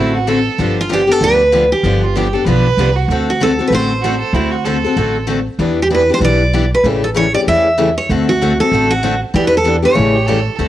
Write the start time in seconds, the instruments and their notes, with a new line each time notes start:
Already playing: upright bass A1, steel-string acoustic guitar D3 A3 C4 F#4 A4, violin E4
0.14 violin F#4
0.27 steel-string acoustic guitar D3 A3 C4 F#4 A4, violin A4
0.58 upright bass G1, steel-string acoustic guitar D3 F3 B3 D4 G4
0.81 steel-string acoustic guitar F4
0.89 steel-string acoustic guitar D3 F3 B3 D4 G4
0.93 steel-string acoustic guitar G4
1.07 steel-string acoustic guitar B3 D4 G4
1.11 steel-string acoustic guitar A4
1.21 upright bass D2, steel-string acoustic guitar D3 F3 B3 D4 G4 B4
1.52 steel-string acoustic guitar D3 F3 B3 D4 G4
1.72 steel-string acoustic guitar G4
1.83 upright bass G1, steel-string acoustic guitar D3 F3 B3 D4 G4
2.03 violin F4
2.16 steel-string acoustic guitar D3 F3 B3 D4 G4, violin G4
2.33 steel-string acoustic guitar B3 D4 G4, violin A4
2.45 upright bass B1, steel-string acoustic guitar D3 F3 B3 D4 G4, violin B4
2.77 upright bass C2, steel-string acoustic guitar D3 F3 B3 D4 G4
2.96 violin F#4
3.08 upright bass D2, steel-string acoustic guitar D3 A3 C4 F#4 A4
3.30 steel-string acoustic guitar F#4
3.40 steel-string acoustic guitar D3 A3 C4 F#4 A4
3.59 steel-string acoustic guitar C4 F#4 A4
3.67 upright bass A1, steel-string acoustic guitar B4
3.72 steel-string acoustic guitar D3 A3 C4 F#4 A4 C5
4.01 steel-string acoustic guitar D3 A3 C4 F#4, violin F#4
4.05 steel-string acoustic guitar A4
4.20 violin A4
4.33 upright bass D2, steel-string acoustic guitar D3 A3 C4 F#4 A4, violin E4
4.52 violin F#4
4.65 steel-string acoustic guitar D3 A3 C4 F#4 A4, violin A4
4.84 steel-string acoustic guitar C4 F#4 A4
4.96 upright bass A1, steel-string acoustic guitar D3 A3 C4 F#4 A4
5.27 steel-string acoustic guitar D3 A3 C4 F#4 A4
5.58 upright bass E2, steel-string acoustic guitar E3 G3 B3 D4 E4 G4 B4
5.82 steel-string acoustic guitar G4
5.90 steel-string acoustic guitar E3 G3 B3 D4 E4 G4 B4
5.94 steel-string acoustic guitar B4
6.09 steel-string acoustic guitar B3 D4 G4
6.14 steel-string acoustic guitar C5
6.20 upright bass B1, steel-string acoustic guitar E3 G3 B3 D4 E4 G4 B4
6.24 steel-string acoustic guitar D5
6.53 steel-string acoustic guitar E3 G3 B3 D4 E4 G4 B4
6.75 steel-string acoustic guitar B4
6.84 upright bass A1, steel-string acoustic guitar C#3 E3 G3 A3 C#4 E4 G4 A4
7.04 steel-string acoustic guitar A4
7.14 steel-string acoustic guitar C#3 E3 G3 A3 C#4 E4 G4 A4 C#5
7.34 steel-string acoustic guitar A3 C#4 G4 D5
7.47 upright bass E2, steel-string acoustic guitar C#3 E3 G3 A3 C#4 E4 G4 A4 E5
7.78 steel-string acoustic guitar C#3 E3 G3 A3 C#4 E4 G4 A4
7.98 steel-string acoustic guitar C#5
8.09 upright bass D2, steel-string acoustic guitar D3 A3 C4 F#4 A4
8.29 steel-string acoustic guitar F#4
8.41 steel-string acoustic guitar D3 A3 C4 F#4 A4
8.60 steel-string acoustic guitar C4 F#4 A4
8.72 upright bass A1, steel-string acoustic guitar D3 A3 C4 F#4 A4
8.90 steel-string acoustic guitar F#4
9.03 steel-string acoustic guitar D3 A3 C4 F#4 A4
9.34 upright bass E2, steel-string acoustic guitar E3 G3 B3 D4 E4 G4 B4
9.47 steel-string acoustic guitar B4
9.57 steel-string acoustic guitar A4
9.64 steel-string acoustic guitar E3 G3 B3 D4 E4 G4 B4
9.82 steel-string acoustic guitar B3 D4 G4 C#5
9.94 upright bass A1, steel-string acoustic guitar C#3 E3 A3 C#4 G4
9.99 steel-string acoustic guitar G3 E4 A4
10.14 violin G4
10.27 steel-string acoustic guitar C#3 E3 G3 A3 C#4 E4 G4 A4, violin A4
10.59 upright bass D2, steel-string acoustic guitar D3 A3 C4 F#4 A4